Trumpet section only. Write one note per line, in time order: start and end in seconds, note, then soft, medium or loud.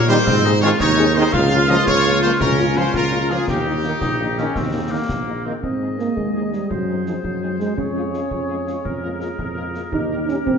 0.08 0.59 C5 loud
0.61 0.70 C#5 loud
0.79 1.13 C#5 loud
1.16 1.34 C5 loud
1.33 1.69 F5 loud
1.69 1.87 D#5 loud
1.87 2.20 C#5 loud
2.22 2.30 C5 loud
2.41 2.74 A#4 loud
2.77 2.95 C5 loud
2.95 3.28 A#4 loud
3.30 3.48 G#4 loud
3.48 5.05 G4 loud
5.81 5.87 G#4 soft
5.98 6.05 G#4 soft
6.34 6.41 G#4 soft
6.52 6.58 G#4 soft
6.88 6.95 G#4 soft
7.06 7.13 G#4 soft
7.42 7.48 G#4 soft
7.59 7.66 G#4 soft
7.96 8.02 G#4 soft
8.13 8.20 G#4 soft
8.49 8.55 G#4 medium
8.66 8.73 G#4 soft
9.03 9.09 A#4 soft
9.20 9.27 A#4 soft
9.57 9.63 A#4 medium
9.75 9.81 A#4 medium
10.10 10.17 A#4 medium
10.28 10.35 A#4 soft